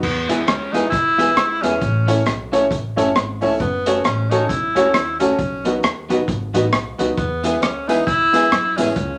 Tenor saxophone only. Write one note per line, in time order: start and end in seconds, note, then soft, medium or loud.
0.03 0.48 B3 medium
0.47 0.74 C#4 medium
0.72 0.89 D#4 loud
0.90 1.63 E4 loud
1.61 2.25 C#4 loud
3.60 4.02 B3 medium
4.04 4.31 C#4 medium
4.30 4.49 D#4 medium
4.48 5.18 E4 loud
5.19 5.79 C#4 loud
7.17 7.63 B3 medium
7.62 7.89 C#4 medium
7.88 8.06 D#4 medium
8.06 8.78 E4 loud
8.77 9.18 C#4 medium